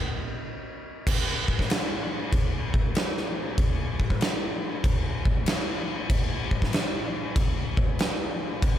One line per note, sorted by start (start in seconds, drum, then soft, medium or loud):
1.07 kick loud
1.07 crash loud
1.07 crash medium
1.48 kick medium
1.59 kick medium
1.59 snare soft
1.70 snare loud
1.70 crash medium
2.32 kick loud
2.32 crash medium
2.74 kick medium
2.95 snare loud
2.95 crash medium
3.17 snare soft
3.58 kick loud
3.58 crash medium
4.00 kick medium
4.10 kick medium
4.21 snare loud
4.21 crash medium
4.84 kick loud
4.84 crash medium
5.25 kick medium
5.46 snare loud
5.46 crash medium
6.10 kick loud
6.10 crash medium
6.51 kick medium
6.62 kick medium
6.62 snare soft
6.73 snare loud
6.73 crash medium
7.36 kick loud
7.36 crash medium
7.77 kick loud
7.99 snare loud
7.99 crash medium
8.62 kick loud
8.62 crash medium